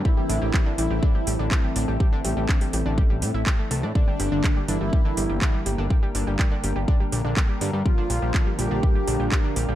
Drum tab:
HH |--o---o---o---o-|--o--oo---o---o-|--o---o---o---o-|--o---o---o---o-|
CP |----x-------x---|----x-------x---|----x-------x---|----x-------x---|
BD |o---o---o---o---|o---o---o---o---|o---o---o---o---|o---o---o---o---|

HH |--o---o---o---o-|
CP |----x-------x---|
BD |o---o---o---o---|